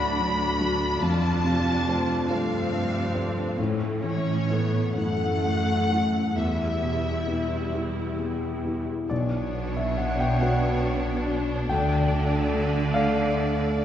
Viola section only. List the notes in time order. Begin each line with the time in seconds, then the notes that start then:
Already playing: D4 F#4
1.01 F4
2.29 C4 D4
3.58 A3 C#4
4.03 C#4
4.50 B3
4.97 A3
6.36 G3 E4
9.09 B3
11.70 A3